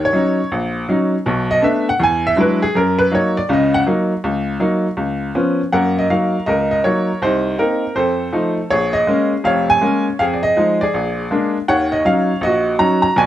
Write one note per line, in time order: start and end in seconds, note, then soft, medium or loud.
0.05 0.50 C#5 medium
0.13 0.39 F#3 medium
0.13 0.39 C#4 soft
0.13 0.39 D#4 medium
0.52 0.84 A#1 medium
0.89 1.14 F#3 medium
0.89 1.14 C#4 soft
0.89 1.14 D#4 medium
1.26 1.58 B1 medium
1.26 1.58 B2 medium
1.51 1.63 D#5 medium
1.62 1.87 A3 medium
1.62 1.88 B3 soft
1.62 1.88 D4 medium
1.62 1.87 E5 medium
1.89 2.01 F#5 medium
2.00 2.32 E2 medium
2.00 2.25 G#5 medium
2.27 2.38 E5 medium
2.36 2.62 F#3 soft
2.36 2.62 G#3 soft
2.36 2.62 D4 soft
2.36 2.62 E4 medium
2.41 2.62 B4 medium
2.62 2.75 G#4 medium
2.75 3.07 F#2 medium
2.75 2.99 A#4 medium
2.99 3.11 B4 medium
3.11 3.37 F#3 medium
3.11 3.37 A#3 soft
3.11 3.37 D#4 medium
3.11 3.36 C#5 medium
3.37 3.49 D5 medium
3.49 3.81 C#2 medium
3.49 3.81 C#3 medium
3.53 3.74 D#5 medium
3.74 3.82 F#5 loud
3.86 4.11 F#3 medium
3.86 4.11 A#3 medium
3.86 4.12 D#4 medium
4.24 4.56 C#2 medium
4.60 4.85 F#3 medium
4.60 4.85 A#3 medium
4.60 4.86 D#4 medium
4.97 5.29 C#2 medium
5.35 5.60 F3 medium
5.35 5.60 B3 soft
5.35 5.60 C#4 medium
5.72 6.05 F#2 medium
5.72 6.05 A#3 medium
5.72 6.43 A#4 medium
5.72 5.94 F#5 medium
5.99 6.10 D#5 medium
6.10 6.35 F#3 medium
6.10 6.35 A#3 soft
6.10 6.35 D#4 medium
6.10 6.48 F5 medium
6.46 6.79 C#2 medium
6.46 7.18 A#4 medium
6.46 6.69 D#5 medium
6.71 6.83 D#5 medium
6.84 7.10 F#3 medium
6.84 7.10 A#3 soft
6.84 7.10 D#4 medium
6.84 7.19 C#5 medium
7.22 7.54 C2 medium
7.22 7.58 D#4 medium
7.22 7.60 C5 medium
7.59 7.84 A#3 medium
7.59 7.84 C4 soft
7.59 7.84 D#4 medium
7.59 7.97 A#4 medium
7.95 8.28 F2 medium
7.95 8.67 A4 medium
7.95 8.53 C5 medium
8.33 8.58 F3 medium
8.33 8.58 A3 soft
8.33 8.58 D#4 medium
8.70 9.02 A#1 medium
8.70 9.42 G#4 medium
8.70 8.95 C#5 medium
8.93 9.28 D#5 medium
9.07 9.32 G#3 medium
9.07 9.32 A#3 soft
9.07 9.33 C#4 medium
9.44 9.76 F1 medium
9.44 9.76 F2 medium
9.44 10.16 C#5 medium
9.44 9.67 F5 medium
9.70 10.04 G#5 loud
9.81 10.07 G#3 medium
9.81 10.07 A#3 soft
9.81 10.07 C#4 medium
10.19 10.51 F2 medium
10.19 10.82 G#4 medium
10.19 10.24 F5 medium
10.33 10.43 D5 medium
10.43 10.77 D#5 medium
10.56 10.82 F3 medium
10.56 10.82 G#3 soft
10.56 10.82 D#4 medium
10.81 11.52 G#4 medium
10.81 11.51 D5 medium
10.94 11.26 A#1 medium
11.31 11.56 G#3 soft
11.31 11.56 A#3 soft
11.31 11.56 D4 medium
11.68 12.00 D#2 medium
11.68 12.00 D#3 medium
11.68 12.39 C#5 medium
11.68 11.93 F#5 loud
11.92 12.04 D#5 medium
12.05 12.30 F#3 medium
12.05 12.30 C#4 soft
12.05 12.30 D#4 medium
12.05 12.40 F5 medium
12.41 12.74 A#1 medium
12.41 13.14 F#4 medium
12.41 12.81 D#5 medium
12.79 13.05 F#3 soft
12.79 13.05 C#4 soft
12.79 13.05 D#4 medium
12.79 13.01 A#5 loud
13.02 13.17 A#5 medium
13.16 13.26 B1 medium
13.16 13.26 B2 medium
13.16 13.26 G#5 loud
13.20 13.26 D5 medium